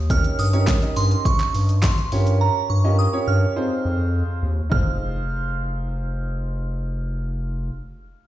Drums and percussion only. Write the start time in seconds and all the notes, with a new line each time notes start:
0.10 kick, closed hi-hat, shaker
0.24 closed hi-hat, shaker
0.39 open hi-hat, shaker
0.53 closed hi-hat, shaker
0.67 kick, snare, clap, closed hi-hat, shaker
0.82 closed hi-hat, shaker
0.96 open hi-hat, shaker
1.11 closed hi-hat, shaker
1.25 kick, closed hi-hat, shaker
1.40 clap, closed hi-hat, shaker
1.54 open hi-hat, shaker
1.69 closed hi-hat, shaker
1.83 kick, snare, clap, closed hi-hat, shaker
1.98 closed hi-hat, shaker
2.12 open hi-hat, shaker
2.27 closed hi-hat, shaker
4.72 kick, floor tom